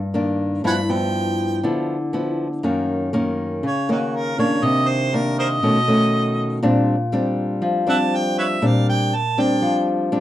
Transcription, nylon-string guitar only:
Already playing: G2
0.14 D#3 A#3 D4
0.64 G2 F3 B3 E4
0.89 F3 B3 E4
1.63 D3 F3 B3 E4
2.13 F3 B3 E4
2.63 F#2 D#3 A#3 C#4
3.13 D#3 A#3 C#4
3.63 C#3
3.89 D#3 A#3 C#4
4.38 D#3 A#3 D4
4.63 C3
5.13 D#3 A#3 D4
5.63 B2 D#3 A3 C#4
5.87 D#3 A3 C#4
6.62 A#2 G3 C4 D4
7.12 G3 C4 D4
7.62 F3
7.87 G3 C4 D4
8.62 A#2 G3 C4 D4
9.38 G3 C4 D4
9.62 F3
10.12 G3 C4 D4

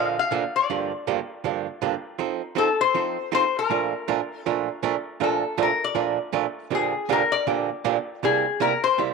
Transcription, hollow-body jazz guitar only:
Already playing: A#2 D3 F3 A#3 D4 A4
0.31 A#2 D3 F3 A#3 D4 A4
0.70 G2 D3 F3 A#3 D4 G4
1.07 G2 D3 F3 A#3 D4 G4
1.44 G2 D3 F3 A#3 D4 G4
1.82 G2 D3 F3 A#3 D4 G4
2.19 F3 C4 D#4 A4
2.55 F3 C4 D#4 A4
2.94 F3 C4 D#4 A4
3.32 F3 C4 D#4 A4
3.70 A#2 F3 A3 D4 F4 A#4
4.08 A#2 F3 A3 D4 F4 A#4
4.46 A#2 F3 A3 D4 F4 A#4
4.83 A#2 F3 A3 D4 F4 A#4
5.20 A#2 F3 A3 D4 F4 A#4
5.58 A#2 F3 A3 D4 F4 A#4
5.95 A#2 F3 A3 D4 F4 A#4
6.33 A#2 F3 A3 D4 F4 A#4
6.70 A#2 D3 F3 A#3 D4 G4
7.09 A#2 D3 F3 A#3 D4 G4
7.47 A#2 D3 F3 A#3 D4 G4
7.84 A#2 D3 F3 A#3 D4 G4
8.23 C3 G3 A#3 E4 G4
8.60 C3 G3 A#3 E4 G4
8.98 C3 G3 A#3 E4 G4

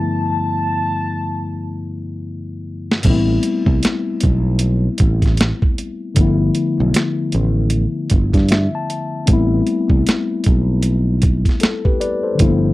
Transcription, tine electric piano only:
Already playing: G2 D3 F3 A3 B3 E4
3.03 B2 G3 A3
3.08 B3 C4 E4
6.15 D3 F3 A3
6.19 B3 E4
8.51 E5
8.75 A5
9.26 G3 A3 C4
9.31 B3 E4
11.61 A4
11.85 G4 B4
12.01 B4 D5
12.23 A4 C5
12.35 D3 F3 A3
12.40 A#3 E4
12.46 B3

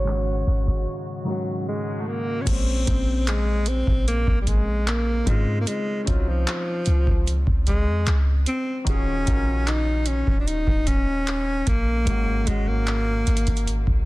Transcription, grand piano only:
Already playing: G#2 D#3 C#4 F#4
0.05 G#2 D#3 C#4
0.10 F#4
1.25 G#2 D#3 C#4
1.30 F#4
2.44 A#2 G#3 C4
2.49 C#4
2.85 A#2 G#3 C4
2.89 C#3
5.25 C#3 C4 D#4
5.29 F4
6.04 C4 C#4 D#4
6.09 F4
8.85 D#3 C#4 F4 F#4
8.89 G#4
9.25 D#3 C#4 F4 F#4
9.30 A#4
12.05 G#2 G#3 C#4
12.10 F#4
12.45 G#2 G#3 C#4
12.50 F#4

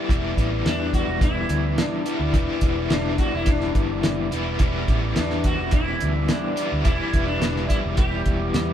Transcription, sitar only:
0.66 D4
0.94 F#4
1.22 E4
1.80 D4
2.92 D4
3.20 F#4
3.35 E4
3.49 D4
5.18 D4
5.45 F#4
5.73 E4
6.30 D4
6.85 E4
7.26 D4
7.68 E4
7.98 G4

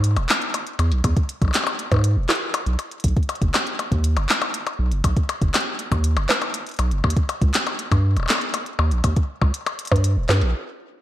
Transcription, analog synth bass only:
Already playing: G#2
0.17 E1
0.79 E2
0.92 B1
1.04 E2
1.42 B1
1.92 G#2
2.16 E1
2.66 B1
3.04 B1
3.42 F#1
3.92 D#2
4.17 F#1
4.79 B1
4.92 F#1
5.04 B1
5.41 F#1
5.92 D#2
6.16 F#1
6.79 B1
6.92 F#1
7.04 D#2
7.42 C#2
7.91 G2
8.16 D#1
8.79 D#2
8.91 A#1
9.04 D#2
9.42 C#2
9.92 G2
10.16 D#1
10.29 G2
10.42 A#1

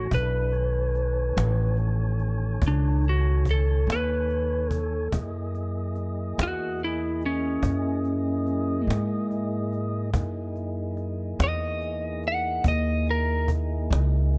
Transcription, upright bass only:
0.12 B1
1.37 A1
2.62 C#2
3.87 D#2
5.13 F#2
6.38 E2
7.63 F#2
8.87 G#2
10.14 F#2
11.39 E2
12.64 D#2
13.90 C#2

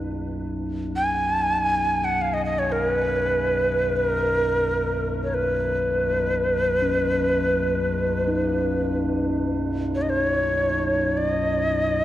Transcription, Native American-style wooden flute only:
0.96 G#5
2.04 F#5
2.21 F5
2.34 D#5
2.45 D#5
2.59 C#5
2.72 A#4
2.88 B4
3.96 A#4
5.24 C#5
5.34 B4
9.95 C#5
10.02 D#5
10.09 C#5
11.17 D#5

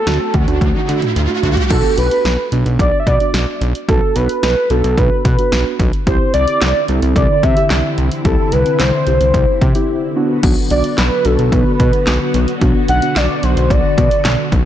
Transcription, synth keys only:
0.07 A3 D4 F#4
0.48 A3 D4 F#4
0.88 A3 D4 F#4
1.29 A3 D4 F#4
1.70 B3 D4 F#4
2.52 B3 D4 F#4
3.20 B3 D4 F#4
3.89 B3 D4 F#4
4.70 B3 D4 F#4
5.39 B3 D4 F#4
6.07 C4 E4 G4
6.89 C4 E4 A4
7.57 C4 E4 G4
8.25 C4 E4 G4
9.07 C4 E4 G4
9.75 C4 E4 G4
10.16 B3 D4 F#4
10.43 B3 D4 F#4
10.71 B3 D4 F#4
11.25 B3 D4 F#4
12.61 B3 D4 F#4
12.89 B3 D4 F#4
13.02 B3 D4 F#4

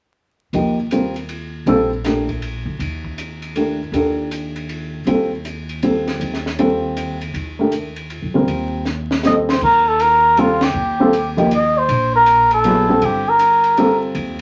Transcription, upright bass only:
0.53 D#2
1.66 A#1
2.65 D2
2.79 D#2
3.92 D#2
5.06 D#2
6.20 D#2
7.34 D#2
8.22 F2
8.35 D2
8.48 D#2
9.61 D#2
10.74 D#2
11.88 A#1
13.01 G1
14.15 D#2

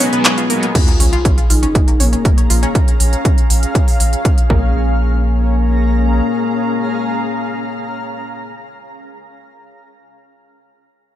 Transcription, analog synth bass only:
1.00 A#1
1.50 A#1
2.00 A#1
2.50 A#1
3.00 A#1
3.50 A#1
4.00 A#1
4.50 A#1

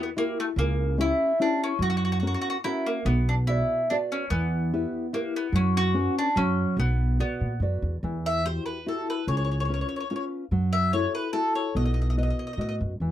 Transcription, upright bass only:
0.56 C#2
1.79 F#2
3.05 B1
4.30 E2
5.52 F#2
6.36 F#2
6.77 B1
7.41 A#2
7.60 F#2
7.82 E2
8.03 E2
9.27 C#2
10.51 F#2
11.75 B1
12.57 A2
12.81 F#2
13.00 E2

